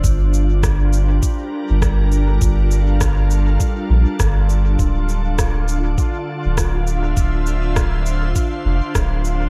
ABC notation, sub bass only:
X:1
M:4/4
L:1/16
Q:"Swing 16ths" 1/4=101
K:Gdor
V:1 name="Sub bass" clef=bass
G,,,8 z3 G,,,4- G,,, | G,,,8 z2 B,,, z G,,,4 | D,,,8 z3 D,,,4- D,,, | D,,,8 z2 F,,, z D,,,4 |]